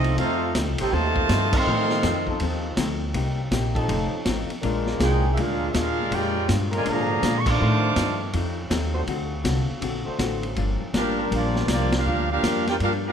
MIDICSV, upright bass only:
0, 0, Header, 1, 3, 480
1, 0, Start_track
1, 0, Key_signature, -1, "major"
1, 0, Tempo, 371058
1, 241, Time_signature, 4, 2, 24, 8
1, 16975, End_track
2, 0, Start_track
2, 0, Title_t, "Upright bass"
2, 0, Program_c, 0, 32
2, 0, Note_on_c, 0, 36, 105
2, 221, Note_off_c, 0, 36, 0
2, 229, Note_on_c, 0, 41, 91
2, 699, Note_off_c, 0, 41, 0
2, 710, Note_on_c, 0, 38, 103
2, 877, Note_off_c, 0, 38, 0
2, 877, Note_on_c, 0, 36, 64
2, 1033, Note_off_c, 0, 36, 0
2, 1041, Note_on_c, 0, 33, 69
2, 1184, Note_off_c, 0, 33, 0
2, 1192, Note_on_c, 0, 39, 94
2, 1660, Note_off_c, 0, 39, 0
2, 1668, Note_on_c, 0, 43, 100
2, 2137, Note_off_c, 0, 43, 0
2, 2152, Note_on_c, 0, 45, 90
2, 2619, Note_off_c, 0, 45, 0
2, 2626, Note_on_c, 0, 41, 99
2, 3095, Note_off_c, 0, 41, 0
2, 3107, Note_on_c, 0, 39, 104
2, 3572, Note_off_c, 0, 39, 0
2, 3580, Note_on_c, 0, 38, 99
2, 4051, Note_off_c, 0, 38, 0
2, 4061, Note_on_c, 0, 36, 95
2, 4531, Note_off_c, 0, 36, 0
2, 4544, Note_on_c, 0, 34, 99
2, 5012, Note_off_c, 0, 34, 0
2, 5032, Note_on_c, 0, 29, 95
2, 5318, Note_off_c, 0, 29, 0
2, 5505, Note_on_c, 0, 33, 97
2, 5794, Note_off_c, 0, 33, 0
2, 5986, Note_on_c, 0, 34, 91
2, 6453, Note_off_c, 0, 34, 0
2, 6463, Note_on_c, 0, 36, 99
2, 6931, Note_off_c, 0, 36, 0
2, 6946, Note_on_c, 0, 38, 95
2, 7412, Note_off_c, 0, 38, 0
2, 7424, Note_on_c, 0, 39, 99
2, 7891, Note_off_c, 0, 39, 0
2, 7905, Note_on_c, 0, 41, 91
2, 8372, Note_off_c, 0, 41, 0
2, 8392, Note_on_c, 0, 43, 105
2, 8855, Note_off_c, 0, 43, 0
2, 8871, Note_on_c, 0, 44, 92
2, 9335, Note_off_c, 0, 44, 0
2, 9344, Note_on_c, 0, 46, 99
2, 9811, Note_off_c, 0, 46, 0
2, 9848, Note_on_c, 0, 45, 93
2, 10292, Note_off_c, 0, 45, 0
2, 10300, Note_on_c, 0, 43, 100
2, 10769, Note_off_c, 0, 43, 0
2, 10786, Note_on_c, 0, 41, 98
2, 11252, Note_off_c, 0, 41, 0
2, 11260, Note_on_c, 0, 39, 105
2, 11730, Note_off_c, 0, 39, 0
2, 11737, Note_on_c, 0, 38, 94
2, 12208, Note_off_c, 0, 38, 0
2, 12217, Note_on_c, 0, 36, 96
2, 12510, Note_off_c, 0, 36, 0
2, 12700, Note_on_c, 0, 34, 94
2, 12992, Note_off_c, 0, 34, 0
2, 13179, Note_on_c, 0, 33, 99
2, 13651, Note_off_c, 0, 33, 0
2, 13668, Note_on_c, 0, 31, 91
2, 13958, Note_off_c, 0, 31, 0
2, 14148, Note_on_c, 0, 33, 93
2, 14618, Note_off_c, 0, 33, 0
2, 14633, Note_on_c, 0, 34, 90
2, 15101, Note_off_c, 0, 34, 0
2, 15111, Note_on_c, 0, 36, 94
2, 15581, Note_off_c, 0, 36, 0
2, 15609, Note_on_c, 0, 38, 98
2, 16071, Note_off_c, 0, 38, 0
2, 16080, Note_on_c, 0, 41, 99
2, 16548, Note_off_c, 0, 41, 0
2, 16556, Note_on_c, 0, 43, 91
2, 16975, Note_off_c, 0, 43, 0
2, 16975, End_track
3, 0, Start_track
3, 0, Title_t, "Muted upright bass strokes"
3, 5339, Note_on_c, 9, 29, 37
3, 5468, Note_off_c, 9, 29, 0
3, 5813, Note_on_c, 9, 29, 39
3, 5942, Note_off_c, 9, 29, 0
3, 12547, Note_on_c, 9, 29, 44
3, 12677, Note_off_c, 9, 29, 0
3, 13032, Note_on_c, 9, 29, 36
3, 13161, Note_off_c, 9, 29, 0
3, 13993, Note_on_c, 9, 29, 46
3, 14123, Note_off_c, 9, 29, 0
3, 16975, End_track
0, 0, End_of_file